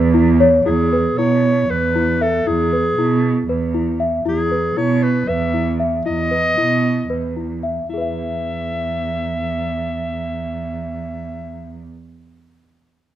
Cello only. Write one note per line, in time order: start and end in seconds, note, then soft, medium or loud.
0.00 0.56 E2 loud
0.65 1.11 E2 medium
1.16 1.62 B2 medium
1.69 2.37 E2 medium
2.46 2.91 E2 medium
2.97 3.42 B2 medium
3.48 4.16 E2 medium
4.25 4.70 E2 medium
4.76 5.21 B2 medium
5.28 5.96 E2 medium
6.06 6.51 E2 medium
6.58 7.04 B2 medium
7.10 7.80 E2 medium
7.89 11.83 E2 medium